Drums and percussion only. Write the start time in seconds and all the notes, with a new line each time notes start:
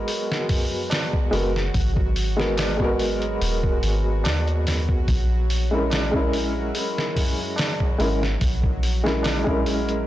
0.08 open hi-hat
0.32 snare
0.49 kick, open hi-hat, tabla ge
0.90 snare, open hi-hat, tabla na
1.13 kick
1.33 open hi-hat
1.56 snare
1.74 kick, open hi-hat
1.97 kick
2.16 open hi-hat
2.40 snare
2.57 snare, open hi-hat, tabla na
2.80 kick
2.99 open hi-hat
3.22 closed hi-hat
3.42 open hi-hat
3.64 kick
3.83 open hi-hat
4.24 snare, open hi-hat, tabla na
4.47 closed hi-hat
4.65 snare, open hi-hat, tabla ge
4.89 kick
5.08 kick, open hi-hat
5.50 open hi-hat
5.90 snare, open hi-hat, tabla na
6.14 kick
6.33 open hi-hat
6.75 open hi-hat
6.98 snare
7.16 kick, open hi-hat, tabla ge
7.56 snare, open hi-hat, tabla na
7.80 kick
8.00 open hi-hat
8.23 snare
8.41 kick, open hi-hat
8.63 kick
8.83 open hi-hat
9.06 snare
9.23 snare, open hi-hat, tabla na
9.47 kick
9.66 open hi-hat
9.89 closed hi-hat